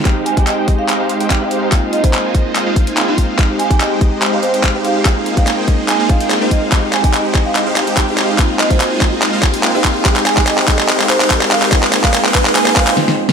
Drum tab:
HH |x-xxx-x-x-xxx-x-|x-xxx-x-x-xxx-x-|x-xxx-x-x-xxx-x-|x-xxx-x-x-xxx-x-|
CP |x---x---x---x---|x---x---x---x---|x---x---x---x---|x---x---x---x---|
SD |----------------|----------------|----------------|----------------|
BD |o--o--o-----o---|o--o--o---o---o-|o--o--o-----o---|o--o--o---o---o-|

HH |x-xxx-x-x-xxx-x-|x-xxx-x-x-xxx-x-|x-xxx-x-x-xxx-x-|x-xxx-x-x-xx----|
CP |x-x-x-x-x-x-x-x-|x-x-x-x-x-x-x-x-|xxxxxxxxxxxxxxxx|xxxxxxxxxxxx----|
SD |----------------|----------------|----------------|------------oo-o|
BD |o--o--o-----o---|o--o--o---o---o-|o--o--o-----o---|o--o--o---o-----|